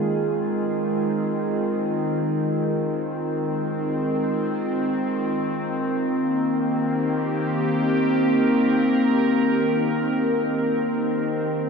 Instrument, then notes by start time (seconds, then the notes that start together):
ambient pad
Already playing: D#3 G#3 C4 F4 G#4
5.37 A#3
6.49 G4
7.65 A#4
11.44 F3